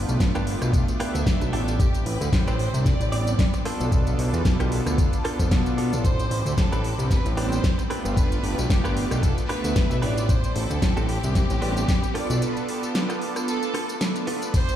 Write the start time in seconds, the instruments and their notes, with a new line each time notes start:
Already playing: analog synth pad A3 B3 D4 F4 B4 G5 D6
0.09 analog synth bass B1, closed hi-hat, tambourine
0.20 analog synth bass G1, muted clean electric guitar stroke, kick, snare, closed hi-hat, tambourine
0.35 clean electric guitar D4 F4 G4 B4, cross-stick, closed hi-hat, tambourine
0.47 open hi-hat
0.61 analog synth bass B1, analog synth pad A3 B3 D4 F4, cross-stick, closed hi-hat, tambourine
0.73 analog synth pad A3 B3 D4 F4, muted clean electric guitar stroke, kick, closed hi-hat, tambourine
0.88 muted clean electric guitar stroke, closed hi-hat, tambourine
0.99 analog synth pad A3 B3 D4 E5, clean electric guitar D4 F4 G4 B4, cross-stick, open hi-hat
1.15 analog synth bass D2, closed hi-hat, tambourine
1.26 kick, snare, closed hi-hat, tambourine
1.41 analog synth bass B1, muted clean electric guitar stroke, closed hi-hat, tambourine
1.52 analog synth bass A1, analog synth pad A3 B3 D4 F4, clean electric guitar D4 F4 G4 A4, violin section A4, open hi-hat
1.68 closed hi-hat, tambourine
1.79 analog synth pad C4 B5 D6, violin section G4, kick, closed hi-hat, tambourine
1.94 closed hi-hat, tambourine
2.06 analog synth bass A1, violin section B4, open hi-hat
2.21 analog synth bass D2, closed hi-hat, tambourine
2.32 analog synth bass A1, violin section C5, muted clean electric guitar stroke, kick, snare, closed hi-hat, tambourine
2.47 clean electric guitar C4 D4 G4 B4, closed hi-hat, tambourine
2.59 open hi-hat
2.73 analog synth bass C2, analog synth pad G3 B3 C4 D4, closed hi-hat, tambourine
2.85 violin section D5, muted clean electric guitar stroke, kick, snare, closed hi-hat, tambourine
3.00 analog synth bass A1, muted clean electric guitar stroke, closed hi-hat, tambourine
3.12 analog synth pad G3 B3 C4 D4, clean electric guitar C4 D4 G4 D5, open hi-hat
3.26 analog synth pad G3 B3 C4 D4, closed hi-hat, tambourine
3.39 kick, snare, closed hi-hat, tambourine
3.54 muted clean electric guitar stroke, closed hi-hat, tambourine
3.64 analog synth pad B3 D4 F4 A4 B4 A5, clean electric guitar B3 D4 F4 A4, cross-stick, open hi-hat
3.80 analog synth bass B1, closed hi-hat, tambourine
3.92 kick, closed hi-hat, tambourine
4.07 closed hi-hat, tambourine
4.19 analog synth bass B1, open hi-hat
4.33 analog synth bass E2, closed hi-hat, tambourine
4.45 analog synth bass B1, muted clean electric guitar stroke, kick, snare, closed hi-hat, tambourine
4.60 clean electric guitar B3 D4 F4 G4, cross-stick, closed hi-hat, tambourine
4.72 open hi-hat
4.86 analog synth bass D2, analog synth pad B3 D4 F4 A4, cross-stick, closed hi-hat, tambourine
4.98 analog synth pad B3 D4 F4 A4, muted clean electric guitar stroke, kick, closed hi-hat, tambourine
5.13 muted clean electric guitar stroke, closed hi-hat, tambourine
5.24 analog synth pad B3 D4 F4 A4, clean electric guitar B3 D4 F4 A4 A5, cross-stick, open hi-hat
5.39 analog synth bass F2, clean electric guitar G5, kick, closed hi-hat, tambourine
5.51 analog synth bass B2, clean electric guitar F5, kick, snare, closed hi-hat, tambourine
5.66 muted clean electric guitar stroke, closed hi-hat, tambourine
5.77 analog synth pad B3 D4 F4 A4, clean electric guitar B3 D4 F4 A4 D5, open hi-hat
5.93 analog synth bass A1, closed hi-hat, tambourine
6.04 analog synth pad C4 G5 B5, violin section C5, kick, closed hi-hat, tambourine
6.19 closed hi-hat, tambourine
6.31 analog synth bass A1, open hi-hat
6.46 analog synth bass D2, closed hi-hat, tambourine
6.57 analog synth bass A1, violin section A4, muted clean electric guitar stroke, kick, snare, closed hi-hat, tambourine
6.72 clean electric guitar C4 D4 G4 B4, closed hi-hat, tambourine
6.84 open hi-hat
6.98 analog synth bass C2, analog synth pad G3 B3 C4 D4, closed hi-hat, tambourine
7.11 violin section B4, muted clean electric guitar stroke, kick, snare, closed hi-hat, tambourine
7.25 analog synth bass A1, muted clean electric guitar stroke, closed hi-hat, tambourine
7.37 analog synth pad G3 B3 C4 D4, clean electric guitar C4 D4 G4 B4, violin section C5, open hi-hat
7.51 analog synth pad G3 B3 C4 D4, closed hi-hat, tambourine
7.64 kick, snare, closed hi-hat, tambourine
7.78 muted clean electric guitar stroke, closed hi-hat, tambourine
7.89 analog synth pad A3 B3 D4 F4, clean electric guitar C4 D4 G4 B4, cross-stick, open hi-hat
8.05 analog synth bass G1, closed hi-hat, tambourine
8.17 analog synth pad B4 D6, violin section B4, kick, closed hi-hat, tambourine
8.32 closed hi-hat, tambourine
8.43 analog synth bass G1, open hi-hat
8.58 analog synth bass B1, closed hi-hat, tambourine
8.69 analog synth bass G1, violin section G4, muted clean electric guitar stroke, kick, snare, closed hi-hat, tambourine
8.84 clean electric guitar D4 F4 G4 B4, cross-stick, closed hi-hat, tambourine
8.97 open hi-hat
9.10 analog synth bass B1, analog synth pad A3 B3 D4 F4, cross-stick, closed hi-hat, tambourine
9.22 analog synth pad A3 B3 D4 F4, violin section A4, muted clean electric guitar stroke, kick, closed hi-hat, tambourine
9.37 muted clean electric guitar stroke, closed hi-hat, tambourine
9.49 analog synth pad A3 B3 D4 E5, clean electric guitar D4 F4 G4 B4, violin section B4, cross-stick, open hi-hat
9.64 analog synth bass D2, closed hi-hat, tambourine
9.76 kick, snare, closed hi-hat, tambourine
9.90 analog synth bass B1, muted clean electric guitar stroke, closed hi-hat, tambourine
10.02 analog synth bass A1, analog synth pad A3 B3 D4 F4, clean electric guitar D4 F4 G4 B4, violin section D5, open hi-hat
10.17 closed hi-hat, tambourine
10.29 analog synth pad C4 G5 B5 D6, violin section C5, kick, closed hi-hat, tambourine
10.44 closed hi-hat, tambourine
10.56 analog synth bass A1, violin section A4, open hi-hat
10.70 analog synth bass D2, closed hi-hat, tambourine
10.82 analog synth bass A1, muted clean electric guitar stroke, kick, snare, closed hi-hat, tambourine
10.96 clean electric guitar C4 D4 G4 A4, closed hi-hat, tambourine
11.09 violin section G4, open hi-hat
11.23 analog synth bass C2, analog synth pad G3 B3 C4 D4, closed hi-hat, tambourine
11.35 muted clean electric guitar stroke, kick, snare, closed hi-hat, tambourine
11.50 analog synth bass A1, muted clean electric guitar stroke, closed hi-hat, tambourine
11.61 analog synth pad G3 B3 C4 D4, clean electric guitar C4 D4 G4 B4, open hi-hat
11.76 analog synth pad G3 B3 C4 D4, closed hi-hat, tambourine
11.88 kick, snare, closed hi-hat, tambourine
12.03 muted clean electric guitar stroke, closed hi-hat, tambourine
12.14 analog synth pad B3 D4 F4 A4 B4 A5, clean electric guitar B3 D4 F4 A4, violin section D5, cross-stick, open hi-hat
12.30 analog synth bass B1, closed hi-hat, tambourine
12.42 violin section B4, closed hi-hat, tambourine
12.57 closed hi-hat, tambourine
12.68 violin section G4, open hi-hat
12.83 closed hi-hat, tambourine
12.94 muted clean electric guitar stroke, snare, closed hi-hat, tambourine
13.09 clean electric guitar B3 D4 F4 A4, cross-stick, closed hi-hat, tambourine
13.22 open hi-hat
13.35 analog synth pad B3 D4 F4 A4, cross-stick, closed hi-hat, tambourine
13.47 analog synth pad B3 D4 F4 A4, violin section A4, muted clean electric guitar stroke, closed hi-hat, tambourine, swell
13.63 muted clean electric guitar stroke, closed hi-hat, tambourine
13.74 clean electric guitar B3 D4 F4 A4, cross-stick, open hi-hat
13.89 closed hi-hat, tambourine
14.01 snare, closed hi-hat, tambourine
14.15 analog synth pad B3 D4 F4 A4, muted clean electric guitar stroke, closed hi-hat, tambourine
14.27 analog synth pad B3 D4 F4 B4, clean electric guitar B3 D4 F4 A4, open hi-hat
14.42 closed hi-hat, tambourine
14.54 analog synth pad C4 G5 B5, violin section C5, kick, closed hi-hat, crash, tambourine
14.69 closed hi-hat, tambourine